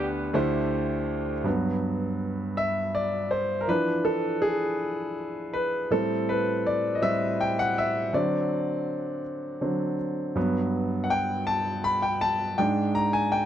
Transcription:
0.00 0.31 D2 medium
0.00 0.31 D3 medium
0.00 0.31 B3 medium
0.00 0.21 D4 medium
0.00 0.31 D4 medium
0.00 0.21 G4 medium
0.00 0.25 B4 medium
0.33 1.42 D2 medium
0.33 1.41 D3 medium
0.33 1.31 A3 medium
0.33 1.32 D4 medium
0.33 1.32 E4 medium
0.33 1.32 G4 medium
0.33 1.32 C5 medium
1.44 2.52 G2 soft
1.44 2.52 F#3 soft
1.44 2.53 B3 soft
2.57 2.95 E5 medium
2.95 3.33 D5 medium
3.31 3.59 C5 medium
3.61 3.68 A#4 medium
3.68 4.75 E3 soft
3.68 4.76 F3 soft
3.68 4.76 D4 medium
3.68 4.07 B4 medium
4.05 4.43 A4 medium
4.42 5.12 G#4 medium
5.53 5.92 B4 medium
5.90 6.40 A2 soft
5.90 6.40 G3 soft
5.90 6.41 C4 medium
5.90 6.29 A4 medium
6.29 6.63 B4 medium
6.66 6.94 D5 medium
6.95 7.02 D#5 medium
7.01 7.35 A2 soft
7.01 7.35 G3 soft
7.01 7.35 C4 soft
7.01 7.37 E5 medium
7.41 7.46 G5 medium
7.59 7.64 F#5 medium
7.78 8.15 E5 medium
8.13 9.20 D3 soft
8.13 9.21 F#3 soft
8.13 9.21 C4 medium
8.13 9.95 D5 medium
9.61 9.95 D3 soft
9.61 9.95 F#3 soft
9.61 9.95 C4 soft
10.35 12.54 G2 soft
10.35 12.54 F#3 soft
10.35 12.54 B3 medium
11.04 11.10 F#5 medium
11.10 11.48 G5 medium
11.47 11.81 A5 medium
11.84 12.03 B5 medium
12.02 12.22 G5 medium
12.21 12.56 A5 medium
12.58 13.08 G#2 medium
12.58 13.08 G#3 soft
12.58 13.08 D4 medium
12.58 12.92 G5 medium
12.95 13.12 A#5 medium
13.13 13.18 G#5 medium
13.32 13.46 G5 medium

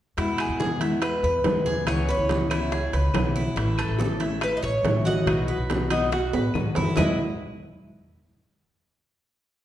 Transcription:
0.17 0.48 E2 medium
0.17 0.80 B2 medium
0.17 0.80 G#3 medium
0.17 0.80 B3 medium
0.17 0.59 E4 medium
0.17 0.79 E4 medium
0.17 high bongo medium
0.17 high conga soft
0.17 high timbale medium
0.38 0.79 G#4 medium
0.38 high bongo soft
0.38 high conga soft
0.38 high timbale loud
0.38 claves medium
0.49 1.20 E2 medium
0.60 0.80 G#4 medium
0.60 high bongo medium
0.60 high conga medium
0.60 low timbale medium
0.79 1.00 D#3 medium
0.79 1.01 G#3 medium
0.79 1.00 B3 medium
0.79 1.01 E4 medium
0.79 1.22 E5 medium
0.79 high bongo soft
0.79 high conga soft
0.79 high timbale medium
1.01 1.83 B4 medium
1.01 muted steel-string acoustic guitar stroke medium
1.01 high bongo medium
1.01 high conga soft
1.01 high timbale medium
1.01 claves medium
1.23 1.44 E2 medium
1.23 1.65 B4 medium
1.23 high bongo soft
1.23 high conga soft
1.44 1.85 D#2 medium
1.44 1.86 G#3 soft
1.44 1.86 B3 soft
1.44 1.87 E4 medium
1.44 high bongo soft
1.44 low bongo medium
1.44 high conga medium
1.44 high timbale medium
1.44 low timbale medium
1.66 2.07 G#4 medium
1.66 high conga medium
1.86 2.17 C#2 medium
1.86 2.49 C#3 medium
1.86 2.51 E3 medium
1.86 2.50 B3 medium
1.86 2.50 C#4 medium
1.86 2.50 E4 medium
1.86 2.09 C#5 loud
1.86 high bongo medium
1.86 high conga soft
1.86 high timbale medium
1.86 claves medium
2.09 2.50 B4 medium
2.09 3.33 C#5 medium
2.09 high bongo soft
2.09 high conga soft
2.18 2.89 C#2 medium
2.29 high bongo medium
2.29 high conga medium
2.29 high timbale medium
2.29 low timbale medium
2.50 2.71 E3 medium
2.50 2.71 B3 medium
2.50 2.71 C#4 medium
2.50 2.71 E4 medium
2.50 high bongo soft
2.50 high conga soft
2.50 high timbale medium
2.50 claves medium
2.72 2.93 G#4 medium
2.72 muted steel-string acoustic guitar stroke medium
2.72 high bongo medium
2.72 high conga soft
2.93 3.13 C#2 medium
2.93 3.35 B4 medium
2.93 high bongo soft
2.93 high conga soft
2.93 high timbale medium
3.14 3.55 B1 medium
3.14 3.55 E3 medium
3.14 3.56 B3 medium
3.14 3.56 C#4 medium
3.14 3.57 E4 medium
3.14 high bongo soft
3.14 low bongo medium
3.14 high conga medium
3.14 high timbale medium
3.14 low timbale medium
3.14 claves medium
3.36 3.55 E4 medium
3.36 high conga medium
3.56 3.87 A1 medium
3.56 4.20 E3 medium
3.56 4.20 A3 medium
3.56 4.20 C#4 medium
3.56 3.98 E4 medium
3.56 4.19 E4 medium
3.56 high bongo medium
3.56 high conga soft
3.56 high timbale medium
3.78 4.18 A4 medium
3.78 high bongo soft
3.78 high conga soft
3.78 high timbale medium
3.78 claves medium
3.88 4.59 A1 medium
3.99 4.20 A4 medium
3.99 high bongo medium
3.99 high conga loud
3.99 low timbale medium
4.20 4.41 A3 medium
4.20 4.41 C#4 medium
4.20 4.41 E4 medium
4.20 4.62 E5 medium
4.20 high bongo soft
4.20 high conga soft
4.20 high timbale medium
4.41 4.57 B4 medium
4.41 muted steel-string acoustic guitar stroke medium
4.41 high bongo medium
4.41 high conga soft
4.41 high timbale medium
4.41 claves medium
4.57 4.63 D#5 medium
4.62 4.82 A1 medium
4.62 5.04 C#5 medium
4.62 5.06 C#5 medium
4.62 high bongo soft
4.62 high conga soft
4.83 5.24 A1 medium
4.83 5.26 E3 soft
4.83 5.26 A3 soft
4.83 5.27 C#4 medium
4.83 5.27 E4 medium
4.83 high bongo soft
4.83 low bongo medium
4.83 high conga medium
4.83 high timbale medium
4.83 low timbale medium
5.05 5.47 F#4 medium
5.05 6.51 D#5 loud
5.05 high conga medium
5.26 5.57 B1 medium
5.26 5.90 B2 medium
5.26 5.90 F#3 medium
5.26 5.90 B3 medium
5.26 5.90 D#4 medium
5.26 5.89 F#4 medium
5.26 high bongo medium
5.26 high conga soft
5.26 high timbale medium
5.26 claves medium
5.48 5.89 B4 medium
5.48 high bongo soft
5.48 high conga soft
5.58 6.29 B1 medium
5.70 high bongo medium
5.70 high conga medium
5.70 high timbale medium
5.70 low timbale medium
5.90 6.10 F#3 soft
5.90 6.10 B3 medium
5.90 6.11 D#4 medium
5.90 6.10 D#4 medium
5.90 6.11 F#4 medium
5.90 high bongo soft
5.90 high conga soft
5.90 high timbale medium
5.90 claves medium
6.11 6.33 F#4 medium
6.11 muted steel-string acoustic guitar stroke medium
6.11 high bongo medium
6.11 high conga soft
6.33 6.53 A2 medium
6.33 6.75 B4 medium
6.33 high bongo soft
6.33 high conga soft
6.33 high timbale medium
6.54 6.74 G#2 medium
6.54 6.96 F#3 soft
6.54 6.96 B3 medium
6.54 6.97 D#4 soft
6.54 6.97 F#4 medium
6.54 high bongo soft
6.54 low bongo medium
6.54 high conga medium
6.54 claves medium
6.75 6.95 F#2 medium
6.75 6.96 E4 medium
6.75 high conga medium
6.75 low timbale medium
6.96 7.14 E2 medium
6.96 7.17 E2 medium
6.96 7.14 B2 medium
6.96 7.14 D#3 medium
6.96 7.15 G#3 medium
6.96 7.15 B3 medium
6.96 7.17 E4 medium
6.96 7.15 E4 medium
6.96 7.17 B4 medium
6.96 7.17 D#5 medium
6.96 7.16 E5 medium
6.96 low bongo medium
6.96 low conga loud
6.96 low timbale medium
6.96 claves loud

